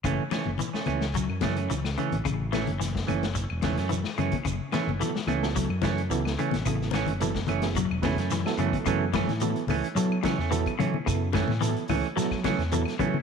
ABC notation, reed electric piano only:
X:1
M:4/4
L:1/16
Q:"Swing 16ths" 1/4=109
K:F#m
V:1 name="Reed electric piano"
z16 | z16 | z4 [F,B,EA] z2 [F,B,EA]2 z3 [F,B,EA]2 z2 | [F,B,EA]2 z2 [F,B,EA] z2 [F,B,EG] z2 [F,B,EB] z2 [F,B,EA]3 |
[F,B,EA]2 z2 [F,B,EA]2 z2 [F,B,EA]2 z2 [F,B,EA]2 z2 | [F,B,EA]2 z2 [F,B,EA]2 z2 [F,B,EA]2 z2 [F,B,EA]2 z2 |]